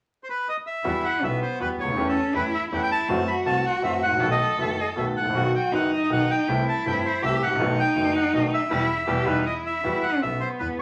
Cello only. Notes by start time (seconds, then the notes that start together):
0.84 E4
1.23 B3
1.97 C#4
2.35 E4
2.71 E4
3.08 F#4
4.21 A4
5.34 F#4
5.72 D#4
6.48 E4
7.23 G4
7.59 D#4
8.70 E4
9.08 G4
9.27 D#4
9.46 E4
9.84 E4
10.22 B3